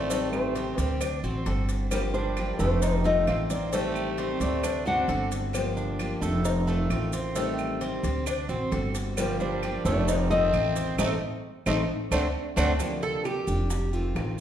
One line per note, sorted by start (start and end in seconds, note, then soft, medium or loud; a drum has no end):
0.00 0.72 A1 medium
0.00 0.29 A3 medium
0.00 0.10 F4 medium
0.00 0.29 D5 loud
0.09 0.54 D#3 medium
0.09 0.55 G3 medium
0.09 0.54 A3 medium
0.09 0.55 C4 medium
0.09 0.55 G4 medium
0.09 cowbell loud
0.09 maracas loud
0.32 0.81 A3 medium
0.32 0.80 C5 medium
0.32 claves medium
0.32 maracas soft
0.55 0.77 D#3 soft
0.55 0.78 G3 medium
0.55 1.00 C4 medium
0.55 0.78 C4 medium
0.55 0.76 G4 medium
0.55 cowbell medium
0.55 maracas soft
0.78 1.20 D2 loud
0.78 1.01 G3 medium
0.78 0.96 G3 medium
0.78 1.00 C4 medium
0.78 1.00 G4 medium
0.78 0.97 A#4 medium
0.78 cowbell medium
0.78 maracas medium
1.01 1.23 D4 medium
1.01 muted steel-string acoustic guitar stroke medium
1.01 cowbell loud
1.01 claves medium
1.01 maracas medium
1.23 1.44 A1 medium
1.23 1.45 A3 medium
1.23 1.46 C4 medium
1.23 1.45 F#4 medium
1.23 maracas soft
1.46 2.53 G1 medium
1.46 1.90 D3 medium
1.46 1.91 A3 medium
1.46 1.91 C4 medium
1.46 1.92 F#4 soft
1.46 1.68 A4 medium
1.46 cowbell medium
1.46 maracas soft
1.69 cowbell medium
1.69 maracas medium
1.91 2.36 D3 medium
1.91 2.35 F3 medium
1.91 2.02 G3 medium
1.91 2.36 A#3 medium
1.91 2.37 D4 medium
1.91 2.37 G4 medium
1.91 1.98 A#4 medium
1.91 cowbell loud
1.91 claves medium
1.91 maracas loud
2.14 2.56 G3 medium
2.14 2.58 D4 medium
2.14 2.56 C5 medium
2.14 maracas soft
2.37 2.59 F3 medium
2.37 2.59 A#3 medium
2.37 2.59 D4 medium
2.37 2.58 G4 medium
2.37 cowbell medium
2.37 claves medium
2.37 maracas soft
2.59 3.23 F1 loud
2.59 2.82 F3 medium
2.59 2.82 A3 medium
2.59 3.02 A3 medium
2.59 2.82 A#3 medium
2.59 2.82 D4 medium
2.59 2.81 G4 medium
2.59 3.05 C5 medium
2.59 maracas medium
2.82 3.04 D#4 medium
2.82 muted steel-string acoustic guitar stroke medium
2.82 cowbell loud
2.82 maracas medium
3.04 3.26 D#3 medium
3.04 3.49 A3 medium
3.04 3.27 A3 medium
3.04 3.27 C4 medium
3.04 3.26 C4 medium
3.04 3.26 F4 medium
3.04 3.27 D#5 medium
3.04 maracas soft
3.27 4.34 A1 medium
3.27 3.71 D#3 soft
3.27 3.72 A3 medium
3.27 3.38 C4 medium
3.27 3.73 C4 soft
3.27 3.73 F4 medium
3.27 3.34 F5 medium
3.27 cowbell medium
3.27 claves medium
3.27 maracas soft
3.50 3.72 A#3 medium
3.50 3.72 C4 medium
3.50 3.74 D5 medium
3.50 cowbell medium
3.50 maracas medium
3.73 4.16 D#3 medium
3.73 4.17 G3 medium
3.73 4.17 A3 medium
3.73 4.37 A3 medium
3.73 4.18 C4 medium
3.73 4.18 G4 medium
3.73 4.37 C5 medium
3.73 cowbell loud
3.73 maracas medium
3.95 claves medium
3.95 maracas soft
4.17 4.40 D#3 medium
4.17 4.40 G3 medium
4.17 4.62 C4 medium
4.17 4.40 C4 medium
4.17 4.39 G4 medium
4.17 cowbell medium
4.17 maracas soft
4.40 5.05 D2 medium
4.40 4.63 G3 medium
4.40 4.83 A3 medium
4.40 4.63 C4 medium
4.40 4.62 G4 medium
4.40 4.87 D5 medium
4.40 cowbell medium
4.40 maracas medium
4.63 4.86 D4 medium
4.63 muted steel-string acoustic guitar stroke medium
4.63 cowbell loud
4.63 claves medium
4.63 maracas medium
4.85 5.08 A3 medium
4.85 5.08 C4 medium
4.85 5.29 D4 medium
4.85 5.08 F#4 medium
4.85 5.29 F#5 loud
4.85 maracas soft
5.08 6.16 G1 medium
5.08 5.52 D3 soft
5.08 5.53 A3 soft
5.08 5.54 C4 medium
5.08 5.54 F#4 medium
5.08 5.31 A4 medium
5.08 cowbell medium
5.08 maracas soft
5.32 cowbell medium
5.32 maracas medium
5.53 5.98 D3 medium
5.53 5.98 F3 medium
5.53 5.99 A#3 medium
5.53 5.99 D4 medium
5.53 5.99 G4 medium
5.53 cowbell loud
5.53 claves medium
5.53 maracas medium
5.77 6.21 D4 medium
5.77 maracas soft
5.99 6.21 F3 medium
5.99 6.22 A#3 medium
5.99 6.21 D4 medium
5.99 6.20 G4 medium
5.99 cowbell medium
5.99 claves medium
5.99 maracas soft
6.21 6.86 F1 loud
6.21 6.44 F3 soft
6.21 6.44 A3 medium
6.21 6.44 A#3 medium
6.21 6.44 D4 medium
6.21 6.44 G4 medium
6.21 maracas medium
6.44 6.67 D#4 medium
6.44 muted steel-string acoustic guitar stroke medium
6.44 cowbell loud
6.44 maracas medium
6.67 6.89 D#3 medium
6.67 7.12 A3 medium
6.67 6.90 A3 medium
6.67 6.90 C4 medium
6.67 6.89 F4 medium
6.67 maracas soft
6.90 7.97 A1 medium
6.90 7.34 D#3 medium
6.90 7.35 A3 medium
6.90 7.35 C4 medium
6.90 7.36 F4 medium
6.90 cowbell medium
6.90 claves medium
6.90 maracas soft
7.13 7.35 C4 medium
7.13 cowbell medium
7.13 maracas medium
7.35 7.80 D#3 medium
7.35 7.81 G3 medium
7.35 7.80 A3 medium
7.35 7.81 C4 medium
7.35 7.81 G4 medium
7.35 cowbell loud
7.35 maracas medium
7.59 claves medium
7.59 maracas soft
7.81 8.03 D#3 medium
7.81 8.03 G3 medium
7.81 8.25 C4 medium
7.81 8.03 C4 medium
7.81 8.02 G4 medium
7.81 cowbell medium
7.81 maracas soft
8.03 8.46 D2 loud
8.03 8.26 G3 medium
8.03 8.26 C4 medium
8.03 8.25 G4 medium
8.03 cowbell medium
8.03 maracas medium
8.26 8.49 D4 medium
8.26 muted steel-string acoustic guitar stroke medium
8.26 cowbell loud
8.26 claves medium
8.26 maracas medium
8.49 8.70 A1 medium
8.49 8.71 A3 medium
8.49 8.71 C4 medium
8.49 8.71 F#4 medium
8.49 maracas soft
8.72 9.79 G1 medium
8.72 9.16 D3 soft
8.72 9.17 A3 medium
8.72 9.17 C4 medium
8.72 9.17 F#4 medium
8.72 8.94 A4 medium
8.72 cowbell medium
8.72 maracas soft
8.95 cowbell medium
8.95 maracas medium
9.17 9.62 D3 medium
9.17 9.62 F3 medium
9.17 9.38 G3 medium
9.17 9.62 A#3 medium
9.17 9.63 D4 medium
9.17 9.63 G4 medium
9.17 9.41 A#4 medium
9.17 cowbell loud
9.17 claves medium
9.17 maracas loud
9.40 9.82 G3 medium
9.40 9.84 D4 medium
9.40 9.87 C5 medium
9.40 maracas soft
9.63 9.84 F3 medium
9.63 9.85 A#3 medium
9.63 9.85 D4 medium
9.63 9.84 G4 medium
9.63 cowbell medium
9.63 claves medium
9.63 maracas soft
9.85 10.49 F1 loud
9.85 10.08 F3 medium
9.85 10.07 A3 medium
9.85 10.28 A3 medium
9.85 10.08 A#3 medium
9.85 10.08 D4 medium
9.85 10.07 G4 medium
9.85 10.30 D5 medium
9.85 maracas medium
10.08 10.30 D#4 medium
10.08 muted steel-string acoustic guitar stroke medium
10.08 cowbell loud
10.08 maracas loud
10.30 10.52 D#3 medium
10.30 10.75 A3 medium
10.30 10.53 A3 medium
10.30 10.95 C4 medium
10.30 10.53 C4 medium
10.30 10.52 F4 medium
10.30 10.97 D#5 loud
10.30 maracas soft
10.53 10.95 A1 medium
10.53 10.98 D#3 soft
10.53 10.98 A3 medium
10.53 10.98 C4 soft
10.53 10.99 F4 medium
10.53 cowbell medium
10.53 claves medium
10.53 maracas soft
10.76 10.98 C4 medium
10.76 cowbell medium
10.76 maracas medium
10.98 11.15 A1 medium
10.98 11.09 A3 medium
10.98 11.13 A3 loud
10.98 11.14 A3 loud
10.98 11.14 C4 medium
10.98 11.13 C4 medium
10.98 11.13 D#4 medium
10.98 11.14 D#4 medium
10.98 11.13 A4 medium
10.98 11.13 C5 medium
10.98 11.13 D#5 medium
10.98 cowbell loud
10.98 claves loud
10.98 maracas loud
11.66 11.83 A1 medium
11.66 11.78 A3 loud
11.66 11.81 A3 medium
11.66 11.81 C4 medium
11.66 11.81 D#4 loud
11.66 11.81 D#4 medium
11.66 11.81 A4 medium
11.66 11.81 C5 medium
11.66 11.81 D#5 medium
11.66 cowbell loud
11.66 claves loud
11.66 maracas medium
12.11 12.28 D2 loud
12.11 12.23 A3 medium
12.11 12.26 A3 medium
12.11 12.27 A3 medium
12.11 12.26 C4 medium
12.11 12.26 D4 medium
12.11 12.27 D4 medium
12.11 12.27 C5 medium
12.11 12.27 D5 medium
12.11 12.27 F#5 medium
12.11 cowbell loud
12.11 claves loud
12.11 maracas loud
12.56 12.74 D2 loud
12.56 12.67 A3 loud
12.56 12.72 A3 medium
12.56 12.72 C4 medium
12.56 12.72 C4 loud
12.56 12.72 D4 loud
12.56 12.72 C5 medium
12.56 12.72 D5 loud
12.56 12.72 F#5 loud
12.56 cowbell loud
12.56 claves medium
12.56 maracas loud
12.79 13.24 D3 medium
12.79 13.23 F3 medium
12.79 13.24 A#3 medium
12.79 13.25 D4 medium
12.79 13.25 G4 medium
12.79 high bongo medium
12.79 claves medium
12.79 maracas medium
13.02 13.25 A4 medium
13.02 maracas soft
13.24 13.46 F3 medium
13.24 13.47 A#3 medium
13.24 13.47 D4 medium
13.24 13.89 G4 medium
13.24 13.46 G4 medium
13.24 high bongo medium
13.24 claves medium
13.24 maracas soft
13.47 14.12 F1 medium
13.47 13.70 F3 medium
13.47 13.70 A#3 medium
13.47 13.70 D4 medium
13.47 13.69 G4 medium
13.47 maracas medium
13.70 muted steel-string acoustic guitar stroke medium
13.70 high bongo medium
13.70 maracas medium
13.93 14.15 D#3 soft
13.93 14.16 A3 medium
13.93 14.15 C4 medium
13.93 14.15 F4 medium
13.93 maracas soft
14.15 14.40 A1 medium
14.15 14.40 D#3 soft
14.15 14.40 A3 soft
14.15 14.40 C4 soft
14.15 14.40 F4 medium
14.15 high bongo medium
14.15 low bongo medium
14.15 claves medium
14.15 maracas soft